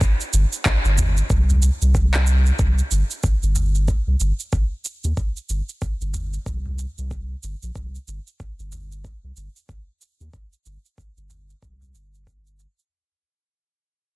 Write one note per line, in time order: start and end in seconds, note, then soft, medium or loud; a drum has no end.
0.01 kick loud
0.01 cabasa soft
0.21 cabasa soft
0.33 0.45 G1 medium
0.33 cabasa medium
0.53 cabasa soft
0.66 kick loud
0.66 clap medium
0.66 cabasa soft
0.85 1.22 G1 medium
0.85 cabasa soft
0.98 udu medium
0.98 cabasa medium
1.17 cabasa soft
1.30 1.69 C2 medium
1.30 kick loud
1.30 cabasa soft
1.50 udu medium
1.50 cabasa soft
1.62 cabasa medium
1.82 1.94 C2 medium
1.82 cabasa soft
1.95 2.51 C2 medium
1.95 kick loud
1.95 cabasa soft
2.14 clap medium
2.14 cabasa soft
2.27 cabasa medium
2.46 cabasa soft
2.59 2.81 C2 loud
2.59 kick loud
2.59 cabasa soft
2.78 cabasa soft
2.91 3.03 G1 medium
2.91 cabasa medium
3.11 cabasa soft
3.23 kick medium
3.23 cabasa soft
3.43 3.95 G1 medium
3.43 cabasa soft
3.55 udu medium
3.55 cabasa medium
3.75 cabasa soft
3.88 kick loud
3.88 cabasa soft
4.07 4.15 C2 medium
4.20 4.32 G1 medium
4.20 cabasa medium
4.40 cabasa soft
4.53 kick loud
4.53 cabasa soft
4.85 cabasa medium
5.04 5.12 D#2 medium
5.04 cabasa soft
5.17 kick loud
5.17 cabasa soft
5.37 cabasa soft
5.50 5.61 G1 medium
5.50 cabasa medium
5.69 cabasa soft
5.82 kick medium
5.82 cabasa soft
6.01 6.38 G1 medium
6.01 cabasa soft
6.14 udu medium
6.14 cabasa medium
6.33 cabasa soft
6.46 6.85 C2 medium
6.46 kick loud
6.46 cabasa soft
6.66 udu medium
6.79 cabasa medium
6.98 7.35 C2 medium
6.98 cabasa soft
7.11 kick medium
7.11 cabasa soft
7.43 7.55 G1 medium
7.43 cabasa medium
7.63 7.70 A#1 medium
7.63 cabasa soft
7.75 7.97 C2 loud
7.75 kick medium
7.75 cabasa soft
7.95 cabasa soft
8.07 8.19 G1 medium
8.07 cabasa medium
8.27 cabasa soft
8.40 kick medium
8.40 cabasa soft
8.59 9.11 G1 medium
8.59 cabasa soft
8.72 udu medium
8.72 cabasa medium
8.92 cabasa soft
9.04 kick medium
9.04 cabasa soft
9.24 9.31 C2 medium
9.37 9.48 G1 medium
9.37 cabasa medium
9.56 cabasa soft
9.69 kick medium
9.69 cabasa soft
10.02 cabasa medium
10.20 10.28 D#2 medium
10.20 cabasa soft
10.33 kick medium
10.33 cabasa soft
10.53 cabasa soft
10.66 10.77 G1 medium
10.66 cabasa medium
10.85 cabasa soft
10.98 kick medium
10.98 cabasa soft
11.17 11.54 G1 medium
11.17 cabasa soft
11.30 udu medium
11.30 cabasa medium
11.50 cabasa soft
11.62 11.94 C2 medium
11.62 kick medium
11.62 cabasa soft
11.81 udu medium
11.81 cabasa soft
11.95 12.66 G1 medium
11.95 cabasa medium
12.14 cabasa soft
12.27 kick medium
12.27 cabasa soft
12.47 cabasa soft
12.60 cabasa medium
12.79 cabasa soft